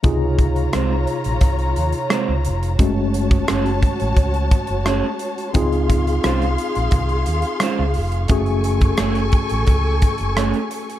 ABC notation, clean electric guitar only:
X:1
M:4/4
L:1/8
Q:1/4=87
K:Db
V:1 name="Clean electric guitar"
z2 [A,CFc] z3 [A,CFc] z | z2 [=A,D_Ad] z3 [=A,D_Ad] z | z2 [A,DFc] z3 [A,DFc] z | z2 [=A,D_Ad] z3 [=A,D_Ad] z |]